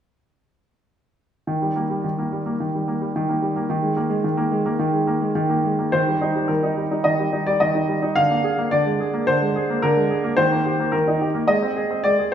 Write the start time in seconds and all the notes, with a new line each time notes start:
1.47 D#3
1.62 G3
1.76 A#3
1.90 G3
2.04 D#3
2.19 A#3
2.32 G3
2.46 A#3
2.60 D#3
2.75 G3
2.88 A#3
3.01 G3
3.16 D#3
3.29 A#3
3.42 G3
3.56 A#3
3.70 D#3
3.83 G#3
3.97 A#3
4.10 G#3
4.24 D#3
4.37 A#3
4.52 G#3
4.66 A#3
4.79 D#3
4.93 G#3
5.07 A#3
5.22 G#3
5.35 D#3
5.50 A#3
5.64 G#3
5.79 A#3
5.92 D#3 C5
6.07 G3
6.21 D#4
6.35 G3
6.48 D#3 A#4
6.63 D#4
6.77 G3
6.91 D#4
7.04 D#3 D#5
7.19 G3
7.33 D#4
7.46 G3 D5
7.60 D#3 D#5
7.75 D#4
7.89 G3
8.02 D#4
8.15 D3 F5
8.30 A#3
8.44 G#4
8.58 A#3
8.71 D3 D5
8.86 G#3
9.00 G#4
9.14 A#3
9.27 D3 C5
9.42 G#3
9.56 G#4
9.70 A#3
9.82 D3 A#4
9.97 G#3
10.11 G#4
10.24 A#3
10.37 D#3 C5
10.52 A#3
10.66 G4
10.80 A#3
10.92 D#3 A#4
11.08 D#4
11.21 G4
11.35 A#3
11.48 G#3 D#5
11.62 C4
11.76 G#4
11.91 C4
12.04 G#3 D5
12.19 G#4